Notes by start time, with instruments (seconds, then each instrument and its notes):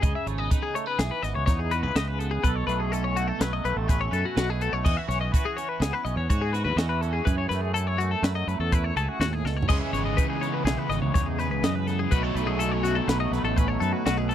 Already playing: clean electric guitar E3
0.02 fingered electric bass C#2, clean electric guitar C#3 G#4 D#5, kick, closed hi-hat
0.15 clean electric guitar E5
0.26 fingered electric bass G#1, clean electric guitar A3 C#5, closed hi-hat
0.38 clean electric guitar B3 D#5
0.50 clean electric guitar D#4 B4, kick, closed hi-hat
0.63 clean electric guitar G#4
0.74 clean electric guitar A3 C#5, closed hi-hat
0.86 clean electric guitar B3 B4
0.98 fingered electric bass B1, clean electric guitar E3 G#4, snare, closed hi-hat
1.11 clean electric guitar B4
1.23 fingered electric bass G#1, clean electric guitar B3 D#5, snare, closed hi-hat
1.35 fingered electric bass C#2, clean electric guitar C#5
1.46 fingered electric bass E2, clean electric guitar D#4 C#5, kick, snare, closed hi-hat
1.59 clean electric guitar G#4
1.71 clean electric guitar F#4 B4, closed hi-hat
1.83 fingered electric bass C#2, clean electric guitar G#4 B4
1.95 fingered electric bass C#2, clean electric guitar C#3 B4 D#5, snare, closed hi-hat
2.08 clean electric guitar B4
2.19 clean electric guitar B3 A4, closed hi-hat
2.31 clean electric guitar G#4
2.43 fingered electric bass B1, clean electric guitar B2 A4 B4, kick, closed hi-hat
2.56 clean electric guitar C#5
2.67 fingered electric bass B1, clean electric guitar A3 B4, closed hi-hat
2.80 clean electric guitar G#4
2.92 clean electric guitar C#4 A4, closed hi-hat
3.04 clean electric guitar C#5
3.16 clean electric guitar A3 F#4, closed hi-hat
3.28 clean electric guitar A4
3.39 fingered electric bass B1, clean electric guitar F#3 B4, snare, closed hi-hat
3.53 clean electric guitar D#5
3.64 fingered electric bass B1, clean electric guitar A3 B4, closed hi-hat
3.76 fingered electric bass A1, clean electric guitar A4
3.88 clean electric guitar C#4 B4, kick, snare, closed hi-hat
4.01 clean electric guitar C#5
4.11 fingered electric bass F#2, clean electric guitar A4 B4, closed hi-hat
4.25 clean electric guitar F#4
4.35 fingered electric bass B1, clean electric guitar B2 F#4 B4, snare, closed hi-hat
4.50 clean electric guitar G#4
4.60 clean electric guitar A3 A4, closed hi-hat
4.73 fingered electric bass B1, clean electric guitar C#5
4.84 fingered electric bass E2, clean electric guitar E3 F#4 D#5, kick, crash
4.97 clean electric guitar E5
5.08 fingered electric bass B1, clean electric guitar C#4 C#5, snare, closed hi-hat
5.21 clean electric guitar D#5
5.32 clean electric guitar F#4 B4, kick, closed hi-hat
5.45 clean electric guitar G#4
5.57 clean electric guitar C#4 C#5, closed hi-hat
5.69 clean electric guitar B4
5.80 fingered electric bass C#2, clean electric guitar B3 G#4, snare, closed hi-hat
5.93 clean electric guitar B4
6.05 fingered electric bass B1, clean electric guitar C#4 D#5, closed hi-hat
6.16 fingered electric bass E2, clean electric guitar C#5
6.30 fingered electric bass G#2, clean electric guitar F#4 C#5, kick, closed hi-hat
6.42 clean electric guitar G#4
6.53 clean electric guitar F#4 B4, snare, closed hi-hat
6.65 fingered electric bass E2, clean electric guitar B4
6.76 fingered electric bass E2, clean electric guitar E3 F#4 D#5, snare, closed hi-hat
6.89 clean electric guitar B4
7.01 clean electric guitar C#4 A4, closed hi-hat
7.13 clean electric guitar G#4
7.25 clean electric guitar F#2 G#4 B4, fingered electric bass F#2, kick, closed hi-hat
7.38 clean electric guitar C#5
7.49 fingered electric bass F#2, clean electric guitar A3 B4, snare, closed hi-hat
7.61 clean electric guitar G#4
7.74 clean electric guitar E4 A4, closed hi-hat
7.87 clean electric guitar C#5
7.98 clean electric guitar A3 F#4, closed hi-hat
8.11 clean electric guitar A4
8.22 fingered electric bass F#2, clean electric guitar F#3 B4, snare, closed hi-hat
8.35 clean electric guitar D#5
8.47 fingered electric bass F#2, clean electric guitar A3 B4, closed hi-hat
8.60 fingered electric bass E2, clean electric guitar A4
8.72 clean electric guitar E4 B4, kick, closed hi-hat
8.84 clean electric guitar C#5
8.96 fingered electric bass C#2, clean electric guitar G#4 A4, closed hi-hat
9.09 clean electric guitar F#4
9.20 fingered electric bass D#2, clean electric guitar A2 F#4, snare, closed hi-hat
9.33 clean electric guitar G#4
9.44 fingered electric bass C#2, clean electric guitar B2 A4, snare
9.57 clean electric guitar C#5
9.62 floor tom
9.68 fingered electric bass C#2, overdriven electric guitar C#3 E3 G#3 C#4, clean electric guitar C#3 G#4 D#5, kick, splash, crash
9.81 clean electric guitar E5
9.93 fingered electric bass G#1, clean electric guitar B3 C#5, snare, closed hi-hat
10.05 clean electric guitar D#5
10.17 clean electric guitar D#4 B4, kick, closed hi-hat
10.30 clean electric guitar G#4
10.41 clean electric guitar B3 C#5, closed hi-hat
10.54 clean electric guitar B4
10.65 fingered electric bass B1, clean electric guitar E3 G#4, snare, closed hi-hat
10.78 clean electric guitar B4
10.89 fingered electric bass G#1, clean electric guitar B3 D#5, snare, closed hi-hat
11.02 fingered electric bass C#2, clean electric guitar C#5
11.14 fingered electric bass E2, clean electric guitar D#4 C#5, kick, snare, closed hi-hat
11.26 clean electric guitar G#4
11.39 clean electric guitar G#4 B4, snare, closed hi-hat
11.50 fingered electric bass C#2, clean electric guitar B4
11.63 fingered electric bass F#2, clean electric guitar C#3 B4 D#5, snare, closed hi-hat
11.75 clean electric guitar B4
11.87 clean electric guitar B3 A4, snare, closed hi-hat
11.99 clean electric guitar G#4
12.11 fingered electric bass B1, overdriven electric guitar B2 F#3 A3 D#4, clean electric guitar B2 F#4 B4, kick, closed hi-hat
12.23 clean electric guitar A4 C#5
12.35 fingered electric bass B1, clean electric guitar A3 B4, closed hi-hat
12.47 clean electric guitar G#4
12.59 clean electric guitar C#4 A4, snare, closed hi-hat
12.71 clean electric guitar C#5
12.83 clean electric guitar A3 F#4, snare, closed hi-hat
12.95 clean electric guitar A4
13.08 fingered electric bass B1, clean electric guitar F#3 B4, snare, closed hi-hat
13.20 clean electric guitar D#5
13.31 fingered electric bass B1, clean electric guitar A3 B4, snare, closed hi-hat
13.44 fingered electric bass A1, clean electric guitar A4
13.56 clean electric guitar C#4 B4, kick, closed hi-hat
13.68 clean electric guitar C#5
13.80 fingered electric bass F#2, clean electric guitar A4 B4, closed hi-hat
13.93 clean electric guitar F#4
14.06 fingered electric bass B1, clean electric guitar B2 F#4 B4, snare, closed hi-hat
14.18 clean electric guitar G#4
14.29 clean electric guitar A3 A4, closed hi-hat